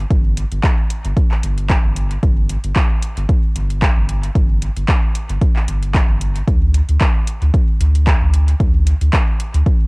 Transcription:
0.10 G1, kick, closed hi-hat
0.37 closed hi-hat
0.51 G1, closed hi-hat
0.64 kick, clap, closed hi-hat
0.90 closed hi-hat
1.05 G1, closed hi-hat
1.17 kick, closed hi-hat
1.31 clap
1.43 G1, closed hi-hat
1.58 closed hi-hat
1.70 kick, clap, closed hi-hat
1.84 G1
1.96 closed hi-hat
2.11 closed hi-hat
2.23 G1, kick, closed hi-hat
2.49 closed hi-hat
2.64 G1, closed hi-hat
2.76 kick, clap, closed hi-hat
3.03 closed hi-hat
3.17 G1, closed hi-hat
3.29 kick, closed hi-hat
3.56 G1, closed hi-hat
3.70 closed hi-hat
3.82 kick, clap, closed hi-hat
3.96 G1
4.09 closed hi-hat
4.23 closed hi-hat
4.35 G1, kick, closed hi-hat
4.62 closed hi-hat
4.76 G1, closed hi-hat
4.88 kick, clap, closed hi-hat
5.15 closed hi-hat
5.29 G1, closed hi-hat
5.41 kick, closed hi-hat
5.56 clap
5.68 G1, closed hi-hat
5.83 closed hi-hat
5.95 kick, clap, closed hi-hat
6.09 G1
6.21 closed hi-hat
6.36 closed hi-hat
6.48 D2, kick, closed hi-hat
6.74 closed hi-hat
6.89 D2, closed hi-hat
7.01 kick, clap, closed hi-hat
7.27 closed hi-hat
7.42 D2, closed hi-hat
7.54 kick, closed hi-hat
7.80 D2, closed hi-hat
7.95 closed hi-hat
8.07 kick, clap, closed hi-hat
8.21 D2
8.34 closed hi-hat
8.48 closed hi-hat
8.60 D2, kick, closed hi-hat
8.87 closed hi-hat
9.01 D2, closed hi-hat
9.13 kick, clap, closed hi-hat
9.40 closed hi-hat
9.54 D2, closed hi-hat
9.66 kick, closed hi-hat

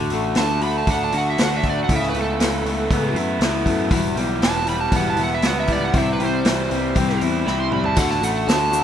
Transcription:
Already playing: D3 A3 D4 F#4
0.10 A1 A3 D4 F#4, open hi-hat
0.35 D2 D3 A3 D4 F#4 A5, snare, open hi-hat
0.61 A3 D4 F#4 B5, open hi-hat
0.78 A5
0.87 D2 D3 A3 D4 F#4 F#5, kick, open hi-hat
1.04 A5
1.12 D2 A3 D4 F#4, open hi-hat
1.17 F#5
1.31 E5
1.38 D2 D3 A3 D4 F#4, snare, open hi-hat
1.45 F#5
1.57 E5
1.63 A3 D4 F#4, kick, open hi-hat
1.70 D5
1.84 F#5
1.89 C#2 C#3 E3 A3 B3 E4, kick, open hi-hat
1.96 E5
2.03 snare
2.09 B4
2.14 C#2 A3 B3 E4, open hi-hat
2.21 A4
2.39 C#2 E3 A3 B3 E4, snare, open hi-hat
2.64 C#2 A3 B3 E4, open hi-hat
2.91 C#2 C#3 E3 A3 B3 E4, kick, open hi-hat
3.14 F#2 B3 E4, open hi-hat
3.18 A3
3.39 C#2 E3 A3 B3 E4, snare, open hi-hat
3.66 F#2 A3 B3 E4, kick, open hi-hat
3.90 E1 E2 B2 E3 G3 B3 E4, kick, open hi-hat
4.15 B1 E3 G3 B3 E4, open hi-hat
4.41 E1 E3 G3 B3 E4 A5, snare, open hi-hat
4.66 E3 G3 B3 E4 B5, open hi-hat
4.81 A5
4.91 E1 E2 B2 E3 G3 B3 E4, kick, open hi-hat
4.96 F#5
5.10 A5
5.17 E1 E3 G3 B3 E4, open hi-hat
5.23 F#5
5.35 E5
5.42 C#2 E3 G3 B3 E4, snare, open hi-hat
5.47 F#5
5.60 E5
5.67 E3 G3 B3 E4, kick, open hi-hat
5.72 D5
5.84 F#5
5.93 C2 C3 E3 G3 C4 E4, kick, open hi-hat
5.98 E5
6.13 B4
6.19 C2 G3 C4 E4, open hi-hat
6.25 C5
6.44 C2 E3 G3 C4 E4, snare, open hi-hat
6.70 C2 G3 C4 E4, open hi-hat
6.94 C2 C3 E3 G3 C4 E4, kick, open hi-hat
7.09 snare
7.19 E2 G3 C4 E4, open hi-hat
7.44 C2 E3 G3 C4 E4 B5, snare
7.60 C6
7.70 C2 G3 C4 E4 B5, mid tom
7.84 A5, floor tom
7.95 D2 D3 A3 D4 F#4 F#5, kick, open hi-hat, splash, shaker
8.11 A5, snare
8.21 A1 A3 D4 F#4 F#5, open hi-hat, shaker
8.46 D2 D3 A3 D4 F#4 A5, snare, open hi-hat, shaker
8.71 A3 D4 F#4, open hi-hat, shaker

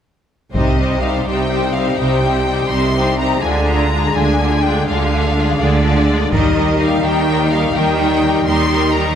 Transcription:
0.51 C2 C3 G3 C4 D#4 G4 C5 D#5, taiko
0.78 G3 D#4 G4 C5
1.00 G3 D#4 G4 C5 F5
1.26 C2 C3 G3 D#4 G4 C5 G5
1.51 G3 D#4 G4 C5
1.72 G3 D#4 F5
1.76 G4 C5
1.97 C2 C3 G3 D#4 G4 C5 G5
2.21 G3 D#4 G4 C5
2.46 G3 D#4 G4 C5
2.69 C2 C3 G3 D#4 G4 C5 C6
2.95 G3 D#4 G4 C5
3.17 G3 D#4 A#5
3.21 G4 C5
3.41 D2 D3 G#3 D4 F4 G#4 G#5
3.66 G#3 D4 F4 G#4 A#5
3.92 G#3 D4 F4 G#4
4.13 D2 D3 G#3 D4 F4 G#4 G#5
4.39 G#3 D4 F4 G#4
4.61 G#3 D4 F4 G#4 G5
4.86 D2 D3 G#3 D4 F4 G#4 F5
5.12 G#3 D4 F4 G#4
5.36 G#3 D4 F4 G#4
5.58 D2 D3 G#3 D4 F4 G#4 D5
5.83 G#3 D4 F4 G#4
6.07 G#3 D4 F4 G#4
6.30 D#2 D#3 G3 D#4 G4 A#4 D#5, taiko
6.55 G3 D#4 G4 A#4
6.79 G3 D#4 G4 A#4 F5
7.02 D#2 D#3 G3 D#4 G4 A#4 G5
7.27 G3 D#4 G4 A#4
7.50 G3 D#4 G4 A#4 F5
7.74 D#2 D#3 G3 D#4 G4 A#4 G5
7.99 G3 D#4 G4 A#4
8.23 G3 D#4 G4 A#4
8.45 D#2 D#3 G3 D#4 G4 A#4 C6
8.70 G3 D#4 G4 A#4
8.92 D#4 G4 A#4 A#5
8.96 G3

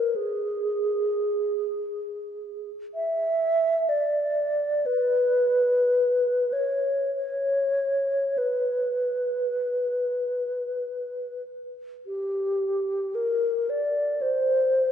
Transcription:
Already playing: A#4
0.16 G#4
2.95 E5
3.89 D5
4.86 B4
6.53 C#5
7.16 C#5
8.38 B4
12.07 G4
13.15 A#4
13.70 D5
14.22 C5

